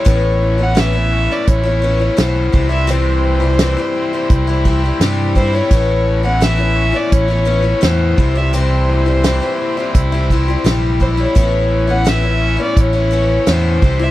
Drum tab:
HH |x---x---x---x---|x---x---x---x---|x---x---x---x---|x---x---x---x---|
SD |----o--o----o---|----o-------o---|----o-------o---|----o-------o---|
BD |o-------o-----o-|--------o-o---o-|o-------o-----o-|--------o-o---o-|

HH |x---x---x---x---|
SD |----o-------o---|
BD |o-------o-----o-|